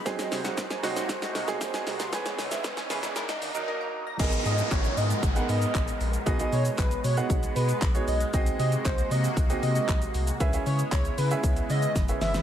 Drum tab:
CC |----------------|----------------|x---------------|----------------|
HH |xxoxxxoxxxoxxxox|xxoxxxoxxxox----|xxoxxxoxxxoxxxox|xxoxxxoxxxoxxxox|
SH |xxxxxxxxxxxxxxxx|xxxxxxxxxxxx----|xxxxxxxxxxxxxxxx|xxxxxxxxxxxxxxxx|
CP |----------------|----------------|----x-------x---|----x-------x---|
SD |oooooooooooooooo|oooooooooo------|----------------|----------------|
BD |o---o---o---o---|o---o-----------|o---o---o---o---|o---o---o---o---|

CC |----------------|----------------|
HH |xxoxxxoxxxoxxxox|xxoxxxoxxxoxxxox|
SH |xxxxxxxxxxxxxxxx|xxxxxxxxxxxxxxxx|
CP |----x-------x---|----x-----------|
SD |----------------|------------o-oo|
BD |o---o---o---o---|o---o---o---o---|